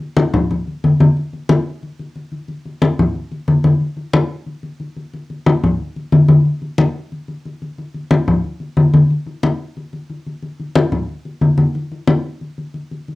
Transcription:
0.00 high conga soft
0.17 high conga loud
0.34 high conga soft
0.34 low conga medium
0.51 high conga soft
0.51 low conga medium
0.68 high conga soft
0.84 high conga medium
1.00 high conga loud
1.17 high conga soft
1.33 high conga soft
1.49 high conga loud
1.83 high conga soft
1.99 high conga soft
2.16 high conga soft
2.32 high conga soft
2.48 high conga soft
2.65 high conga soft
2.82 high conga loud
2.99 high conga soft
2.99 low conga medium
3.15 high conga soft
3.32 high conga soft
3.48 high conga medium
3.64 high conga medium
3.81 high conga soft
3.97 high conga soft
4.13 high conga loud
4.46 high conga soft
4.63 high conga soft
4.80 high conga soft
4.96 high conga soft
5.14 high conga soft
5.30 high conga soft
5.46 high conga loud
5.64 high conga soft
5.64 low conga medium
5.80 high conga soft
5.96 high conga soft
6.12 high conga medium
6.28 high conga loud
6.45 high conga soft
6.62 high conga soft
6.78 high conga loud
7.12 high conga soft
7.28 high conga soft
7.45 high conga soft
7.62 high conga soft
7.78 high conga soft
7.94 high conga soft
8.11 high conga loud
8.28 high conga soft
8.28 low conga medium
8.44 high conga soft
8.60 high conga soft
8.77 high conga medium
8.94 high conga medium
9.11 high conga soft
9.26 high conga soft
9.43 high conga medium
9.77 high conga soft
9.93 high conga soft
10.10 high conga soft
10.27 high conga soft
10.43 high conga soft
10.60 high conga soft
10.76 high conga loud
10.92 high conga soft
10.92 low conga medium
11.09 high conga soft
11.25 high conga soft
11.41 high conga medium
11.58 high conga medium
11.75 high conga soft
11.92 high conga soft
12.07 high conga loud
12.41 high conga soft
12.58 high conga soft
12.74 high conga soft
12.91 high conga soft
13.08 high conga soft

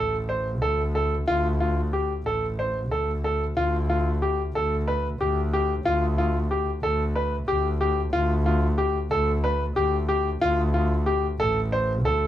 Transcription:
0.00 0.63 A1 medium
0.00 0.15 A4 medium
0.29 0.48 C5 medium
0.62 1.17 D2 medium
0.62 0.81 A4 medium
0.95 1.14 A4 medium
1.27 2.11 D2 medium
1.27 1.46 F4 medium
1.60 1.79 F4 medium
1.93 2.12 G4 medium
2.25 2.93 A1 medium
2.25 2.45 A4 medium
2.59 2.77 C5 medium
2.91 3.47 D2 medium
2.91 3.10 A4 medium
3.24 3.43 A4 medium
3.56 4.39 D2 medium
3.56 3.75 F4 medium
3.90 4.08 F4 medium
4.22 4.41 G4 medium
4.54 5.10 D2 medium
4.54 4.74 A4 medium
4.88 5.06 B4 medium
5.20 5.75 D2 medium
5.20 5.39 G4 medium
5.53 5.72 G4 medium
5.85 6.68 D2 medium
5.85 6.04 F4 medium
6.18 6.37 F4 medium
6.51 6.69 G4 medium
6.82 7.38 D2 medium
6.82 7.02 A4 medium
7.15 7.34 B4 medium
7.48 8.03 D2 medium
7.48 7.67 G4 medium
7.81 7.99 G4 medium
8.13 8.97 D2 loud
8.13 8.32 F4 medium
8.46 8.65 F4 medium
8.78 8.97 G4 medium
9.11 9.67 D2 medium
9.11 9.30 A4 medium
9.44 9.63 B4 medium
9.76 10.32 D2 medium
9.76 9.95 G4 medium
10.09 10.28 G4 medium
10.41 11.25 D2 loud
10.41 10.60 F4 medium
10.74 10.93 F4 medium
11.06 11.25 G4 medium
11.40 12.06 A1 medium
11.40 11.59 A4 medium
11.72 11.91 C5 medium
12.05 12.27 D2 medium
12.05 12.24 A4 medium

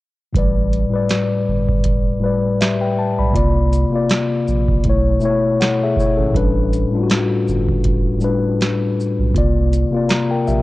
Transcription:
0.33 0.85 A1 medium
0.33 0.88 A2 medium
0.33 0.89 G3 medium
0.33 kick loud
0.33 closed hi-hat medium
0.37 0.90 B4 medium
0.37 0.91 D5 medium
0.73 closed hi-hat soft
0.90 2.14 A2 medium
0.90 2.15 G3 medium
0.90 2.15 B4 medium
0.95 2.16 D5 medium
1.09 snare loud
1.09 closed hi-hat medium
1.48 1.80 G1 medium
1.68 kick loud
1.84 2.17 E1 loud
1.84 kick medium
1.84 closed hi-hat medium
2.20 3.28 A2 medium
2.20 3.28 G3 medium
2.20 2.60 B4 medium
2.26 2.61 D5 medium
2.61 2.80 G4 soft
2.61 2.80 E5 medium
2.61 snare loud
2.61 closed hi-hat medium
2.81 2.97 B4 medium
2.81 2.97 G5 medium
2.99 3.17 A5 medium
3.19 3.33 B1 medium
3.19 3.36 D5 soft
3.19 3.54 B5 medium
3.31 3.87 C3 medium
3.31 3.88 A#3 medium
3.31 3.89 F4 medium
3.31 kick loud
3.35 3.85 C2 loud
3.35 3.90 D5 medium
3.35 closed hi-hat medium
3.73 closed hi-hat soft
3.73 shaker soft
3.90 4.83 C3 medium
3.90 4.84 A#3 medium
3.90 4.85 F4 medium
3.96 4.86 D5 medium
4.09 snare loud
4.09 closed hi-hat medium
4.48 4.80 A#1 medium
4.48 shaker soft
4.68 kick medium
4.84 5.17 B1 loud
4.84 5.18 B2 medium
4.84 5.21 A3 medium
4.84 5.22 E4 medium
4.84 kick medium
4.84 closed hi-hat medium
4.90 5.22 C#5 medium
5.20 6.27 B2 medium
5.20 6.28 A3 medium
5.20 5.60 E4 medium
5.20 shaker soft
5.25 5.61 C#5 medium
5.60 5.80 A4 soft
5.60 5.80 F#5 medium
5.60 snare loud
5.60 closed hi-hat medium
5.83 5.98 G#4 medium
5.83 5.98 E5 medium
5.97 6.18 C#5 medium
5.97 kick medium
5.97 shaker soft
6.01 6.19 E4 medium
6.17 6.33 G#1 medium
6.17 6.53 C#4 soft
6.17 6.53 A4 medium
6.31 6.87 A2 medium
6.31 6.88 G3 medium
6.31 6.89 D4 medium
6.31 kick loud
6.35 6.85 A1 loud
6.35 6.90 B4 medium
6.35 closed hi-hat medium
6.73 closed hi-hat soft
6.73 shaker soft
6.91 8.14 A2 medium
6.91 8.15 G3 medium
6.91 8.16 D4 medium
6.97 7.00 F4 medium
7.03 8.20 F#4 medium
7.10 snare loud
7.10 closed hi-hat medium
7.48 7.80 G1 medium
7.48 shaker soft
7.69 kick loud
7.84 8.17 E1 loud
7.84 kick medium
7.84 closed hi-hat medium
8.18 9.27 A2 medium
8.18 9.28 G3 medium
8.18 9.28 D4 medium
8.18 shaker soft
8.24 9.30 B4 medium
8.61 snare loud
8.61 closed hi-hat medium
9.00 shaker soft
9.19 9.33 B1 medium
9.32 9.85 C2 loud
9.32 9.88 C3 medium
9.32 9.89 A#3 medium
9.32 9.90 F4 medium
9.32 kick loud
9.32 closed hi-hat medium
9.38 9.91 D5 medium
9.73 closed hi-hat medium
9.73 shaker soft
9.91 10.62 C3 medium
9.91 10.62 A#3 medium
9.91 10.10 F4 medium
9.97 10.09 D5 medium
10.09 10.29 D5 soft
10.09 10.29 A#5 medium
10.09 snare loud
10.09 closed hi-hat medium
10.31 10.47 A#4 medium
10.31 10.46 G5 medium
10.47 10.62 A#1 medium
10.47 10.62 G4 medium
10.47 10.62 E5 medium
10.47 shaker soft

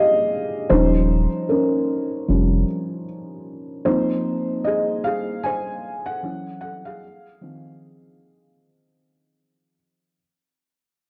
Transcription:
0.00 0.72 G4 medium
0.00 0.72 G#4 medium
0.00 0.72 D#5 medium
0.00 0.72 F5 loud
0.70 1.27 D#1 loud
0.70 1.26 F3 medium
0.70 1.26 G3 soft
0.70 1.26 C#4 medium
0.70 1.46 D#4 medium
0.70 1.51 C5 medium
1.49 2.28 C#4 medium
1.49 3.03 A#4 medium
2.28 2.64 F1 medium
2.28 2.64 F3 soft
2.28 2.64 G3 soft
2.28 2.64 C#4 medium
3.85 5.01 F3 soft
3.85 5.01 A#3 medium
3.85 5.01 C4 medium
3.85 4.62 D#4 medium
3.85 4.61 C5 medium
4.64 5.03 G#4 medium
4.64 5.05 D#5 medium
5.04 5.42 G#4 medium
5.04 5.45 F5 medium
5.43 6.04 C5 medium
5.43 6.03 G#5 loud
6.06 6.59 A4 medium
6.06 6.58 F#5 loud
6.23 6.98 E3 soft
6.23 6.98 F#3 soft
6.23 6.98 C#4 medium
6.61 6.85 A4 medium
6.61 6.86 F#5 medium
6.85 9.75 G#4 medium
6.85 9.74 F5 medium
7.41 10.14 D#3 soft
7.41 10.14 F3 soft
7.41 10.14 C4 medium

